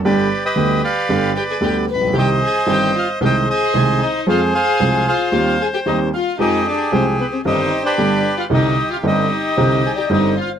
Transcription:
<<
  \new Staff \with { instrumentName = "Bandoneon" } { \time 4/4 \key c \minor \tempo 4 = 113 << { d''8. ees''8. f''4 g''16 aes''16 g''8 b''8 | g''8 aes''8 g''8 f''8 g''8 aes''4 ees''8 | f''8 aes''4 f''4 aes''16 g''16 ees''8 f''8 | ees''8 d''8 c''8 b'16 c''16 ees''8. d''4 f''16 |
ees''8. f''16 ees''4. aes''16 g''16 ees''8 f''8 | } \\ { <g' b'>8. <g' b'>8. <b' d''>2 r8 | <c'' ees''>2 <c'' ees''>8 <c'' ees''>4. | <aes' c''>8 <c'' f''>4 c''2 r8 | <g' aes'>2 <g' c''>8. <g' b'>4~ <g' b'>16 |
g'4 g'2~ g'8 r8 | } >> }
  \new Staff \with { instrumentName = "Clarinet" } { \time 4/4 \key c \minor r1 | r1 | r1 | r1 |
r2 c''8. d''16 c''4 | }
  \new Staff \with { instrumentName = "Violin section" } { \time 4/4 \key c \minor r2 r8 g'16 aes'16 g'8 b'8 | g'8 aes'8 g'8 f'8 g'8 aes'4 ees'8 | f'8 aes'4 f'4 aes'16 g'16 ees'8 f'8 | ees'8 d'8 c'8 b16 c'16 ees'8. d'4 f'16 |
ees'8. f'16 ees'4. aes'16 g'16 ees'8 f'8 | }
  \new Staff \with { instrumentName = "Grand piano" } { \clef bass \time 4/4 \key c \minor <g,, g, d g b g'>8 r8 <d, d g b g'>8 r8 <g,, g, d g b g'>8 r8 <d, d g b g'>8 r32 a,,32 bes,,32 b,,32 | <c, c ees g c' g'>8 r8 <g,, g, ees g c' g'>8 r8 <c, c ees aes c' aes'>8 r8 <c, c ees aes c' aes'>8 r8 | <f, f aes c' aes'>8 r8 <c, c f aes c' aes'>8 r8 <ees, ees g c' g'>8 r8 <ees, ees g c' g'>8 r8 | <f, f aes c' g'>8 r8 <c, c f aes c' g'>8 r8 <g,, g, ees g c' g'>8 r8 <g,, g, d g b g'>8 r8 |
<c, c d g c' ees'>8 r8 <g,, g, d g c' ees'>8 r8 <c, c d g c' ees'>8 r8 <g,, g, d g c' ees'>8 r8 | }
>>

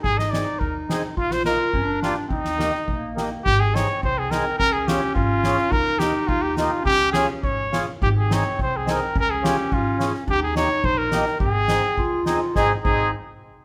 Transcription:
<<
  \new Staff \with { instrumentName = "Trumpet" } { \time 2/4 \key ees \major \tempo 4 = 106 aes'16 ees''16 d''8 bes'16 r8. | f'16 c''16 bes'4 f'8 | ees'4. r8 | \key aes \major g'16 aes'16 des''8 c''16 aes'16 bes'8 |
bes'16 aes'16 g'8 f'4 | bes'8 g'8 f'16 g'16 f'8 | g'8 aes'8 des''8. r16 | g'16 aes'16 des''8 c''16 aes'16 bes'8 |
bes'16 aes'16 g'8 f'8 r8 | g'16 aes'16 des''8 c''16 bes'8. | aes'4. r8 | aes'16 r16 aes'8 r4 | }
  \new Staff \with { instrumentName = "Accordion" } { \time 2/4 \key ees \major r8 <c' ees' aes'>8 r8 <c' ees' aes'>8 | r8 <bes ees' f'>8 r8 <bes d' g'>8 | r8 <bes ees' g'>8 r8 <bes ees' g'>8 | \key aes \major r8 <c' ees' aes'>8 r8 <c' ees' aes'>8 |
r8 <des' f' aes'>8 r8 <des' f' aes'>8 | r8 <bes ees' g'>8 r8 <bes ees' g'>8 | r8 <des' f' aes'>8 r8 <des' f' aes'>8 | r8 <c' ees' aes'>8 r8 <c' ees' aes'>8 |
r8 <des' f' aes'>8 r8 <des' f' aes'>8 | r8 <bes ees' g'>8 r8 <bes ees' g'>8 | r8 <c' ees' aes'>8 r8 <c' ees' aes'>8 | <c' ees' aes'>8 <c' ees' aes'>8 r4 | }
  \new Staff \with { instrumentName = "Clarinet" } { \time 2/4 \key ees \major ees'2 | f'4 d'4 | c'4 bes4 | \key aes \major c'2 |
des'2 | ees'2 | des'4. r8 | c'2 |
des'2 | ees'2 | c'4 f'4 | ees'8 ees'8 r4 | }
  \new Staff \with { instrumentName = "Upright bass" } { \clef bass \time 2/4 \key ees \major aes,,4 ees,4 | bes,,4 g,,4 | ees,4 bes,,4 | \key aes \major aes,,4 c,4 |
des,4 aes,,4 | ees,4 ees,4 | des,4 aes,,4 | aes,,4 c,4 |
des,4 aes,,4 | ees,4 bes,,4 | aes,,4 ees,4 | aes,,8 aes,,8 r4 | }
  \new DrumStaff \with { instrumentName = "Drums" } \drummode { \time 2/4 bd16 sn16 sn8 bd8 sn8 | bd16 sn16 sn8 bd8 sn8 | bd16 sn16 sn16 sn16 bd8 sn8 | bd8 <hhp sn>8 bd8 <hhp sn>8 |
bd8 <hhp sn>8 bd8 <hhp sn>16 sn16 | bd8 <hhp sn>8 bd8 <hhp sn>8 | bd8 <hhp sn>8 bd8 <hhp sn>8 | bd8 <hhp sn>8 bd8 <hhp sn>8 |
bd8 <hhp sn>8 bd8 <hhp sn>16 sn16 | bd8 <hhp sn>8 bd8 <hhp sn>16 sn16 | bd8 <hhp sn>8 bd8 <hhp sn>8 | <bd sn>8 <cymc bd>8 r4 | }
>>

